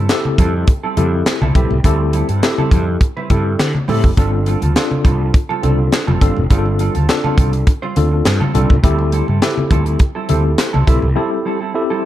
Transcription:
0.09 C4 E4 G4 A4, snare, clap, closed hi-hat
0.25 muted clean electric guitar stroke, high conga
0.38 F2 G3 C4 E4 A4, kick, closed hi-hat, low conga
0.54 E4 A4
0.67 kick, closed hi-hat, muted conga
0.83 G3 C4 E4 A4
0.97 F2 G3 C4 E4 G4 A4, closed hi-hat, high conga
1.13 muted clean electric guitar stroke
1.26 muted clean electric guitar stroke, snare, clap, closed hi-hat, muted conga
1.42 C2 G3 C4 E4 A4, muted conga, high conga
1.55 B1 G3 C4 E4 G4 A4 B4, kick, closed hi-hat, low conga
1.71 C2, muted clean electric guitar stroke, low conga
1.84 D2 G3 C4 E4 G4 A4, kick, closed hi-hat, muted conga
2.00 muted clean electric guitar stroke
2.13 G3 C4 E4 A4, closed hi-hat
2.29 G2 G3 C4 E4 A4, closed hi-hat
2.43 C4 E4 G4 A4, muted clean electric guitar stroke, snare, clap, closed hi-hat, muted conga
2.58 G3 C4 E4 A4, muted conga, high conga
2.71 F2 G3 C4 E4 A4, kick, closed hi-hat, low conga
2.88 muted clean electric guitar stroke
3.01 muted clean electric guitar stroke, kick, closed hi-hat, muted conga
3.17 G3 C4 E4 B4, muted conga
3.30 G2 G3 C4 E4 G4 A4, kick, closed hi-hat, high conga
3.46 muted clean electric guitar stroke
3.59 D3, muted clean electric guitar stroke, snare, clap, closed hi-hat
3.75 muted clean electric guitar stroke, high conga
3.88 A2 G3 C4 E4 G4 A4, open hi-hat, low conga
4.04 F#1, muted clean electric guitar stroke, kick, low conga
4.17 G1 G3 C4 D4 F4 A4, kick, closed hi-hat
4.33 muted clean electric guitar stroke
4.46 G3 C4 F4 A4, closed hi-hat
4.62 D2 G3 C4 F4 A4, closed hi-hat, high conga
4.76 C4 D4 F4 A4, muted clean electric guitar stroke, snare, clap, closed hi-hat, muted conga
4.91 muted clean electric guitar stroke, muted conga, high conga
5.04 C2 G3 C4 F4 A4, kick, closed hi-hat, low conga
5.20 G3 C4 F4 A4
5.34 muted clean electric guitar stroke, kick, closed hi-hat
5.49 G3 C4 F4 A4, muted conga
5.62 C2 G3 C4 D4 F4 A4, closed hi-hat, high conga
5.79 muted clean electric guitar stroke
5.92 muted clean electric guitar stroke, snare, clap, closed hi-hat
6.07 F1 G3 C4 F4 A4, muted conga, high conga
6.21 G1 G3 C4 D4 F4 A4 C5, kick, closed hi-hat, low conga
6.36 F1, muted clean electric guitar stroke, low conga
6.50 G1 G3 C4 D4 F4 G#4 A4, kick, closed hi-hat, muted conga
6.58 A4
6.66 muted clean electric guitar stroke, muted conga
6.79 G3 C4 F4 A4, closed hi-hat
6.95 D2 G3 C4 F4 A4, closed hi-hat, high conga
7.09 C4 D4 F4 A4, snare, clap, closed hi-hat
7.24 G3 C4 F4 A4, high conga
7.38 C2 G3 C4 F4 A4, kick, closed hi-hat, low conga
7.53 muted clean electric guitar stroke, closed hi-hat
7.67 muted clean electric guitar stroke, kick, closed hi-hat
7.82 G3 C4 F4 C5, muted conga
7.96 D2 C4 D4 F4 A4, muted clean electric guitar stroke, closed hi-hat, high conga
8.12 muted clean electric guitar stroke
8.25 G2, muted clean electric guitar stroke, snare, clap, closed hi-hat, muted conga
8.40 G3 C4 F4 A4, muted conga, high conga
8.54 C2 G3 C4 D4 F4 A4, closed hi-hat, low conga
8.70 C2, muted clean electric guitar stroke, kick, low conga
8.83 D2 G3 C4 E4 G4 A4, kick, closed hi-hat
8.99 muted clean electric guitar stroke, muted conga
9.12 G3 C4 E4 A4, closed hi-hat
9.28 G2 G3 C4 E4 A4, high conga
9.42 C4 E4 G4 A4, muted clean electric guitar stroke, snare, clap, closed hi-hat
9.57 muted clean electric guitar stroke, muted conga, high conga
9.70 D2 G3 C4 E4 A4, kick, closed hi-hat, low conga
9.86 G3 C4 E4 A4, closed hi-hat
9.99 muted clean electric guitar stroke, kick, closed hi-hat, muted conga
10.15 G3 C4 E4 A4
10.29 D2 G3 C4 E4 G4 A4, closed hi-hat, high conga
10.45 muted clean electric guitar stroke
10.58 muted clean electric guitar stroke, snare, clap, closed hi-hat
10.73 C2 G3 C4 E4 A4, muted conga, high conga
10.87 B1 G3 C4 E4 G4 A4 B4, kick, closed hi-hat, low conga
11.02 C2, muted clean electric guitar stroke, low conga
11.16 G3 C4 E4 G4 A4
11.32 muted clean electric guitar stroke
11.45 G3 C4 E4 A4
11.61 G3 C4 E4 A4
11.74 C4 E4 G4 A4, muted clean electric guitar stroke
11.90 G3 C4 E4 A4

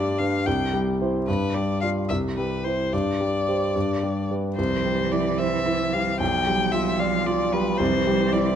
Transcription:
Already playing: G2 G3 D5
0.19 D4 B4 F5
0.46 C2 G5
0.74 G3
1.01 E4 C5
1.27 G2 B4
1.54 G3 D5
1.81 F4 D5 F5
2.09 C2 E5
2.37 G3 B4
2.64 E4 C5
2.93 G2 D5
3.21 G3
3.48 G4 C5
3.76 G2
4.03 G3
4.30 G4 B4
4.57 C2 E3 C5
4.85 G3
5.11 E4 D5
5.38 C5 E5
5.66 E4
5.93 G3 F5
6.19 B1 F3 G5
6.47 G3
6.72 F4 E5
6.99 D5 F5
7.26 F4 D5
7.53 G3 B4
7.78 C2 E3 C5
8.07 G3
8.33 E4 C5 D5

